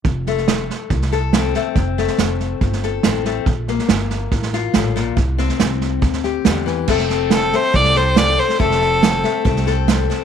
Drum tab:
CC |----------------|----------------|----------------|----------------|
HH |----p-------p---|----p-------p---|----p-------p---|----p-------p---|
SD |o-ooo-o-ooo-o-o-|o-ooo-o-ooo-o-o-|o-ooo-o-ooo-o-o-|o-ooo-o-ooo-o-o-|
BD |o-------o-------|o-------o-------|o-------o-------|o-------o-------|

CC |x---------------|----------------|
HH |----p-------p---|----p-------p---|
SD |ooo-o-o-ooo-o-oo|ooo-o-o-ooo-o-o-|
BD |o-------o-------|o-------o-------|